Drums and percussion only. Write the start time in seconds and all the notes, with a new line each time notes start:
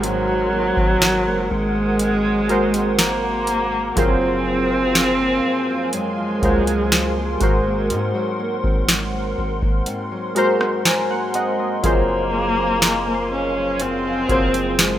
0.03 closed hi-hat
0.77 kick
1.02 snare, closed hi-hat
1.99 closed hi-hat
2.49 closed hi-hat
2.74 closed hi-hat
2.99 snare, closed hi-hat
3.47 closed hi-hat
3.97 kick, closed hi-hat
4.95 snare, closed hi-hat
5.93 closed hi-hat
6.42 kick, closed hi-hat
6.67 closed hi-hat
6.92 snare, closed hi-hat
7.41 kick, closed hi-hat
7.90 closed hi-hat
8.64 kick
8.89 snare, closed hi-hat
9.62 kick
9.86 closed hi-hat
10.36 closed hi-hat
10.61 cross-stick
10.85 snare, closed hi-hat
11.34 closed hi-hat
11.84 kick, closed hi-hat
12.82 snare, closed hi-hat
13.80 closed hi-hat
14.29 kick, closed hi-hat
14.54 closed hi-hat
14.79 snare, closed hi-hat